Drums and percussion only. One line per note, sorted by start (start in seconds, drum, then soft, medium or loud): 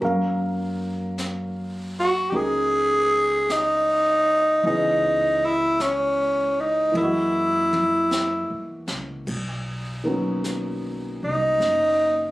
0.03 brush sweep soft
1.18 brush sweep soft
1.18 snare soft
1.18 hi-hat pedal soft
2.33 brush sweep soft
3.49 brush sweep soft
3.49 snare soft
3.49 hi-hat pedal soft
4.64 brush sweep soft
5.80 brush sweep soft
5.80 snare soft
5.80 hi-hat pedal soft
6.95 high tom soft
7.73 high tom medium
8.11 snare soft
8.11 hi-hat pedal soft
8.88 snare medium
9.27 brush sweep soft
9.27 kick medium
9.27 ride medium
10.44 brush sweep soft
10.44 snare soft
10.44 hi-hat pedal soft
11.61 brush sweep soft
11.61 snare soft